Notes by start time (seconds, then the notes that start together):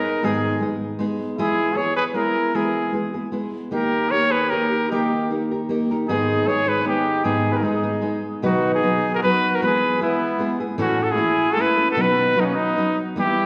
Already playing: G#3 B3 D#4 G#4 A#4
0.22 G#2 D#3 G#3 B3 D#4 G#4
0.61 G#3 B3 D#4 G#4
0.99 G#3 B3 D#4 G#4
1.38 E3 G#3 B3 E4 G#4
1.75 G#3 B3 E4 G#4 C#5
1.96 G#4 B4
2.14 G#3 B3 E4 G#4 A#4
2.55 E3 G#3 B3 E4 G#4
2.93 G#3 B3 E4 G#4
3.14 B3 E4 G#4
3.32 G#3 B3 E4 G#4
3.71 D#3 A#3 D#4 G4 A#4
4.09 A#3 D#4 A#4 C#5
4.13 G4 A#4
4.30 G#4 B4
4.48 A#3 G4 A#4
4.52 D#4 G4 A#4
4.71 D#4 G4 A#4
4.89 D#3 A#3 D#4 G4 A#4
5.30 A#3 D#4 G4 A#4
5.51 D#4 G4 A#4
5.69 A#3 D#4 G4 A#4
5.91 D#4 G4 A#4
6.06 G#2 D#3 G#3 B3 D#4 G#4
6.46 G#3 B3 D#4 G#4 C#5
6.67 G#3 B3 D#4 G#4 B4
6.84 G#3 B3 D#4 G4
7.24 G#2 D#3 G#3 B3 D#4 G#4
7.50 G4 G#4 B4
7.55 A#4
7.61 G#3 B3 D#4 G#4
7.83 G#3 B3 D#4 G#4
8.01 G#3 B3 D#4 G#4
8.42 B2 D#3 F#3 B3 D#4 F#4 B4
8.75 D#4 G#4
8.82 F#3 B3 D#4 B4
9.14 F#4 A#4
9.23 F#3 B3 D#4 B4
9.27 F#4
9.55 F#4 A#4
9.62 E3 G#3 B3 E4 G#4 B4
9.67 G#4
10.00 G#3 B3 E4 G#4
10.04 B3
10.39 G#3 B3 E4 G#4
10.60 B3 E4 G#4
10.78 A2 E3 A3 C#4 E4 F#4 A4
10.82 C#4
11.00 F#4 A4
11.11 E4 G#4
11.17 A3 C#4 E4 A4
11.51 F#4 A4
11.57 A3 C#4 E4 A4
11.61 B4
11.77 A3 C#4 E4 A4
11.90 F#4 A4
11.96 B2 D#3 F#3 B3 D#4 F#4 B4
12.01 B4
12.36 F#3 B3 D#4 B4
12.40 C#4 D#4
12.45 A#3
12.53 B3 D#4
12.77 F#3 B3 D#4 B4
13.16 E3 G3 B3 E4 G4 B4
13.23 E4